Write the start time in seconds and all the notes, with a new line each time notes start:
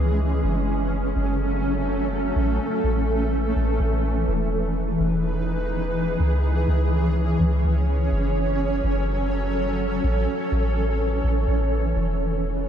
Already playing: C#2 E3 G#3 C#4 G#4
0.44 F#1 F#3 A3 A4
1.16 F#1
2.36 A1 E3
2.84 A1
3.56 A1
3.80 A1
4.28 E1 E3 D#4 G#4 B4
5.00 E1
6.20 C#2 C#4 C#5
6.68 C#2
7.40 C#2
7.64 C#2
8.12 F#1 F#3 A4
8.84 F#1
10.04 A1 E3
10.52 A1
11.24 A1
11.48 A1
11.96 E1 E3 D#4 G#4 B4